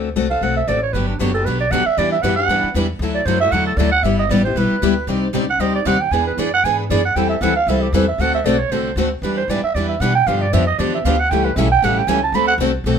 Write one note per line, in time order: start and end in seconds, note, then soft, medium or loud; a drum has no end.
0.00 0.15 D2 medium
0.16 0.41 C2 medium
0.16 0.26 D3 medium
0.16 0.26 A3 medium
0.16 0.26 C4 medium
0.16 0.26 F#4 medium
0.16 0.27 A4 medium
0.31 0.41 C4 soft
0.31 0.42 F#4 soft
0.31 0.41 A4 soft
0.31 0.45 F5 loud
0.41 0.67 B1 medium
0.41 0.60 D3 soft
0.41 0.60 A3 medium
0.41 0.60 C4 medium
0.41 0.60 F#4 medium
0.41 0.61 A4 medium
0.41 0.56 F#5 medium
0.57 0.70 E5 medium
0.67 0.93 A1 medium
0.67 0.78 D3 medium
0.67 0.78 A3 medium
0.67 0.78 C4 medium
0.67 0.78 F#4 medium
0.67 0.79 A4 medium
0.67 0.82 D5 medium
0.83 0.94 C#5 medium
0.93 1.19 G1 medium
0.93 1.12 D3 medium
0.93 1.12 F#3 medium
0.93 1.13 B3 medium
0.93 1.13 D4 medium
0.93 1.13 G4 medium
0.93 1.07 B4 medium
1.08 1.21 D4 medium
1.19 1.45 F#1 medium
1.19 1.30 D3 medium
1.19 1.30 F#3 medium
1.19 1.30 B3 medium
1.19 1.30 D4 medium
1.19 1.34 F#4 medium
1.19 1.30 G4 medium
1.34 1.46 B3 soft
1.34 1.45 D4 soft
1.34 1.45 G4 medium
1.34 1.47 A4 medium
1.45 1.70 B1 medium
1.45 1.64 D3 medium
1.45 1.64 F#3 medium
1.45 1.64 B3 medium
1.45 1.64 D4 medium
1.45 1.65 G4 medium
1.45 1.60 B4 medium
1.60 1.73 D5 medium
1.71 1.85 D2 medium
1.71 1.82 D3 medium
1.71 1.82 F#3 medium
1.71 1.82 B3 medium
1.71 1.82 D4 medium
1.71 1.82 G4 medium
1.71 1.88 F#5 medium
1.86 2.00 E5 loud
1.86 muted upright bass stroke soft
1.97 2.22 E2 medium
1.97 2.16 E3 medium
1.97 2.16 G3 medium
1.97 2.16 B3 medium
1.97 2.16 D4 medium
1.97 2.16 E4 medium
1.97 2.16 G4 medium
1.97 2.16 B4 medium
1.97 2.11 D5 medium
2.12 2.24 E5 medium
2.22 2.48 F#2 loud
2.22 2.34 E3 medium
2.22 2.34 G3 medium
2.22 2.34 B3 medium
2.22 2.34 D4 medium
2.22 2.34 E4 medium
2.22 2.34 G4 medium
2.22 2.34 B4 medium
2.22 2.36 F#5 medium
2.36 2.49 B3 soft
2.36 2.49 D4 soft
2.36 2.49 G4 soft
2.36 2.72 F#5 loud
2.48 2.62 G2 medium
2.48 2.68 E3 medium
2.48 2.67 G3 medium
2.48 2.68 B3 medium
2.48 2.68 D4 medium
2.48 2.68 E4 medium
2.48 2.68 G4 medium
2.48 2.68 B4 medium
2.63 muted upright bass stroke soft
2.74 2.99 E2 medium
2.74 2.86 E3 medium
2.74 2.86 G3 medium
2.74 2.86 B3 medium
2.74 2.86 D4 medium
2.74 2.86 E4 medium
2.74 2.86 G4 medium
2.74 2.86 B4 loud
2.99 3.25 D2 loud
2.99 3.20 D3 medium
2.99 3.20 F#3 medium
2.99 3.20 A3 medium
2.99 3.20 E4 medium
2.99 3.20 F#4 medium
3.03 3.20 A4 medium
3.15 3.27 D5 medium
3.25 3.51 F#2 loud
3.25 3.37 D3 medium
3.25 3.38 F#3 medium
3.25 3.38 A3 medium
3.25 3.38 E4 medium
3.25 3.38 F#4 medium
3.25 3.38 A4 medium
3.25 3.40 C5 medium
3.41 3.53 A3 soft
3.41 3.53 E4 soft
3.41 3.53 F#4 soft
3.41 3.53 E5 loud
3.52 3.76 E2 medium
3.52 3.71 D3 medium
3.52 3.71 F#3 medium
3.52 3.71 A3 medium
3.52 3.72 E4 medium
3.52 3.72 F#4 medium
3.52 3.71 A4 medium
3.52 3.66 F#5 medium
3.66 3.79 A4 medium
3.77 4.02 D2 loud
3.77 3.89 D3 medium
3.77 3.89 F#3 medium
3.77 3.89 A3 medium
3.77 3.89 E4 medium
3.77 3.90 F#4 medium
3.77 3.89 A4 loud
3.77 3.91 D5 medium
3.92 4.05 F#5 loud
4.03 4.29 G1 medium
4.03 4.23 G3 medium
4.03 4.23 B3 medium
4.03 4.23 E4 medium
4.03 4.23 G4 medium
4.03 4.19 E5 medium
4.19 4.32 D#5 medium
4.29 4.55 A1 medium
4.29 4.41 G3 medium
4.29 4.41 B3 medium
4.29 4.41 E4 medium
4.29 4.41 G4 medium
4.29 4.44 D5 medium
4.44 4.56 B3 soft
4.44 4.56 E4 soft
4.44 4.56 G4 soft
4.44 4.59 C5 medium
4.56 4.70 B1 medium
4.56 4.75 G3 medium
4.56 4.75 B3 medium
4.56 4.75 E4 medium
4.56 4.75 G4 medium
4.56 5.09 B4 medium
4.71 muted upright bass stroke soft
4.82 5.06 D2 medium
4.82 4.93 G3 medium
4.82 4.93 B3 medium
4.82 4.93 E4 loud
4.82 4.93 G4 loud
5.07 5.33 C2 medium
5.07 5.27 C3 medium
5.07 5.27 G3 medium
5.07 5.27 C4 medium
5.07 5.27 D#4 medium
5.07 5.27 G4 medium
5.07 5.27 D5 medium
5.33 5.58 C#2 medium
5.33 5.44 C3 medium
5.33 5.44 G3 medium
5.33 5.44 C4 medium
5.33 5.45 D#4 medium
5.33 5.45 G4 medium
5.33 5.45 D5 medium
5.50 5.62 F#5 loud
5.58 5.84 D2 medium
5.58 5.78 C3 medium
5.58 5.78 G3 medium
5.58 5.78 C4 medium
5.58 5.78 D#4 medium
5.58 5.79 G4 medium
5.58 5.79 D5 medium
5.58 5.74 D#5 medium
5.75 5.88 D5 medium
5.85 6.10 D#2 medium
5.85 5.96 C3 medium
5.85 5.96 G3 medium
5.85 5.97 C4 medium
5.85 5.97 D#4 medium
5.85 5.97 G4 medium
5.85 5.97 D5 medium
5.85 6.02 F#5 medium
6.00 6.14 G5 loud
6.11 6.37 E2 medium
6.11 6.30 E3 medium
6.11 6.31 B3 medium
6.11 6.31 D4 medium
6.11 6.31 G#4 medium
6.11 6.31 B4 medium
6.11 6.26 G#5 medium
6.27 6.41 B4 medium
6.37 6.63 F#2 medium
6.37 6.48 E3 medium
6.37 6.49 B3 medium
6.37 6.49 D4 medium
6.37 6.49 G#4 medium
6.37 6.49 B4 loud
6.37 6.53 D5 medium
6.54 6.66 F#5 loud
6.64 6.89 G#2 medium
6.64 6.83 E3 medium
6.64 6.83 B3 medium
6.64 6.83 D4 medium
6.64 6.83 G#4 medium
6.64 6.84 B4 medium
6.64 6.78 G#5 medium
6.79 6.91 B4 medium
6.90 7.15 F#2 medium
6.90 7.00 E3 medium
6.90 7.00 B3 medium
6.90 7.01 D4 medium
6.90 7.01 G#4 medium
6.90 7.01 B4 loud
6.90 7.05 D5 medium
7.05 7.17 F#5 medium
7.16 7.40 E2 medium
7.16 7.34 E3 medium
7.16 7.34 G3 medium
7.16 7.34 C4 medium
7.16 7.35 E4 medium
7.16 7.35 A4 medium
7.16 7.29 G5 loud
7.29 7.44 E5 medium
7.41 7.66 D2 loud
7.41 7.52 E3 medium
7.41 7.52 G3 medium
7.41 7.53 C4 medium
7.41 7.53 E4 medium
7.41 7.53 A4 medium
7.41 7.55 F#5 medium
7.56 7.70 F5 loud
7.67 7.92 C2 medium
7.67 7.86 E3 medium
7.67 7.86 G3 medium
7.67 7.87 C4 medium
7.67 7.87 E4 medium
7.67 7.87 A4 medium
7.67 7.84 E5 medium
7.82 7.96 G4 medium
7.92 8.18 E2 medium
7.92 8.04 E3 medium
7.92 8.04 G3 medium
7.92 8.04 C4 medium
7.92 8.04 E4 medium
7.92 8.05 A4 medium
7.92 8.08 B4 medium
8.08 8.23 E5 medium
8.18 8.44 D2 medium
8.18 8.38 D3 medium
8.18 8.38 A3 medium
8.18 8.38 C4 medium
8.18 8.38 F#4 medium
8.18 8.38 A4 medium
8.18 8.34 F#5 loud
8.34 8.47 E5 medium
8.44 8.69 B1 medium
8.44 8.56 D3 medium
8.44 8.56 A3 medium
8.44 8.56 C4 medium
8.44 8.56 F#4 medium
8.44 8.56 A4 medium
8.44 8.61 D5 medium
8.60 8.73 C#5 loud
8.70 8.95 C2 medium
8.70 8.90 D3 medium
8.70 8.90 A3 medium
8.70 8.90 C4 medium
8.70 8.90 F#4 medium
8.70 8.90 A4 medium
8.70 8.97 C5 medium
8.96 9.21 D2 medium
8.96 9.08 D3 medium
8.96 9.08 A3 medium
8.96 9.08 C4 medium
8.96 9.08 F#4 medium
8.96 9.08 A4 medium
9.22 9.47 E2 medium
9.22 9.41 E3 medium
9.22 9.42 G3 medium
9.22 9.41 B3 medium
9.22 9.42 D4 medium
9.22 9.42 E4 medium
9.22 9.42 G4 medium
9.22 9.36 B4 medium
9.22 9.42 B4 medium
9.37 9.51 C5 medium
9.48 9.62 F#2 medium
9.48 9.59 E3 medium
9.48 9.60 G3 medium
9.48 9.60 B3 medium
9.48 9.60 D4 medium
9.48 9.60 E4 medium
9.48 9.60 G4 medium
9.48 9.60 B4 medium
9.48 9.63 D5 medium
9.63 9.76 E5 loud
9.63 muted upright bass stroke soft
9.75 9.99 E2 medium
9.75 9.94 E3 medium
9.75 9.94 G3 medium
9.75 9.94 B3 medium
9.75 9.94 D4 medium
9.75 9.94 E4 medium
9.75 9.94 G4 medium
9.75 9.94 B4 medium
9.75 9.88 D5 medium
9.89 10.02 E5 medium
10.00 10.26 B2 medium
10.00 10.11 E3 medium
10.00 10.12 G3 medium
10.00 10.11 B3 medium
10.00 10.11 D4 medium
10.00 10.12 E4 medium
10.00 10.12 G4 medium
10.00 10.12 B4 loud
10.00 10.15 F#5 medium
10.15 10.28 G5 loud
10.26 10.52 G2 medium
10.26 10.45 D3 medium
10.26 10.45 F3 medium
10.26 10.45 B3 medium
10.26 10.45 D4 medium
10.26 10.46 G4 medium
10.26 10.43 F5 medium
10.41 10.55 D5 loud
10.53 10.78 F2 medium
10.53 10.63 D3 medium
10.53 10.63 F3 medium
10.53 10.63 B3 medium
10.53 10.63 D4 medium
10.53 10.64 G4 medium
10.53 10.66 E5 loud
10.67 10.80 D#5 loud
10.79 11.04 E2 medium
10.79 10.97 D3 medium
10.79 10.97 F3 medium
10.79 10.97 B3 medium
10.79 10.97 D4 medium
10.79 10.97 G4 medium
10.79 10.93 D5 medium
10.94 11.07 E5 medium
11.05 11.30 D2 medium
11.05 11.15 D3 medium
11.05 11.15 F3 medium
11.05 11.16 B3 medium
11.05 11.16 D4 medium
11.05 11.16 G4 loud
11.05 11.21 F5 loud
11.20 11.31 F#5 loud
11.30 11.55 C#2 medium
11.30 11.49 C#3 medium
11.30 11.49 E3 medium
11.30 11.49 G3 medium
11.30 11.50 A3 medium
11.30 11.50 C#4 medium
11.30 11.50 E4 medium
11.30 11.50 G4 medium
11.30 11.50 A4 medium
11.30 11.47 G5 loud
11.45 11.59 B4 medium
11.56 11.81 B1 medium
11.56 11.67 C#3 medium
11.56 11.67 E3 medium
11.56 11.67 G3 medium
11.56 11.67 A3 medium
11.56 11.68 C#4 medium
11.56 11.67 E4 medium
11.56 11.68 G4 loud
11.56 11.67 A4 loud
11.56 11.71 E5 medium
11.72 11.86 G5 loud
11.82 12.06 A1 medium
11.82 12.00 C#3 medium
11.82 12.01 E3 medium
11.82 12.01 G3 medium
11.82 12.01 A3 medium
11.82 12.01 C#4 medium
11.82 12.01 E4 medium
11.82 12.01 G4 medium
11.82 12.01 A4 medium
11.82 11.99 F#5 loud
11.98 12.10 G5 loud
12.07 12.32 C#2 medium
12.07 12.18 C#3 medium
12.07 12.18 E3 medium
12.07 12.18 G3 medium
12.07 12.18 A3 medium
12.07 12.19 C#4 medium
12.07 12.19 E4 loud
12.07 12.18 G4 medium
12.07 12.19 A4 loud
12.07 12.23 G#5 loud
12.23 12.37 A5 loud
12.32 12.57 D2 medium
12.32 12.52 D3 medium
12.32 12.52 A3 medium
12.32 12.52 C4 medium
12.32 12.52 F#4 medium
12.32 12.52 A4 medium
12.32 12.47 B5 loud
12.48 12.55 F#5 loud
12.58 12.83 C2 medium
12.58 12.70 D3 medium
12.58 12.70 A3 medium
12.58 12.70 C4 medium
12.58 12.70 F#4 loud
12.58 12.71 A4 loud
12.84 12.99 B1 medium
12.84 12.99 D3 medium
12.84 12.99 A3 medium
12.84 12.99 C4 medium
12.84 12.99 F#4 medium
12.84 12.99 A4 medium